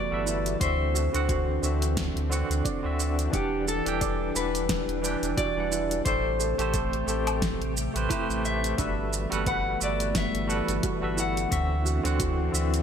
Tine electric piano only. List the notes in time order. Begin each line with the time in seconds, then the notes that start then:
0.10 G3 F#4 A4 B4 E5
0.59 D3 C4 F#4 E5
1.13 D3 C4 F#4 F#5
1.62 D3 C4 F#4 E5
2.30 D3 C4 F#4 F#5
2.82 D3 C4 F#4 E5
3.30 E3 D4 G4 F#5
3.85 E3 D4 G4 G5
4.34 E3 D4 G4 F#5
5.02 E3 D4 G4 G5
5.56 E3 G3 D4 F#5
6.05 A3 G4 A4 C5
6.58 A3 G4 A4 C5
7.07 A3 G4 A4 C5
7.94 A3 G4 B4 C5
8.09 A3 G4 B4 C5
8.77 G3 F#4 A4 B4 E5
9.30 G3 F#4 A4 B4 F#5
9.79 G3 F#4 A4 B4 E5
10.47 G3 F#4 A4 B4 F#5
11.01 G3 F#4 A4 B4 E5
11.49 D3 C4 F#4 E5
12.03 D3 C4 F#4 F#5
12.51 D3 C4 F#4 E5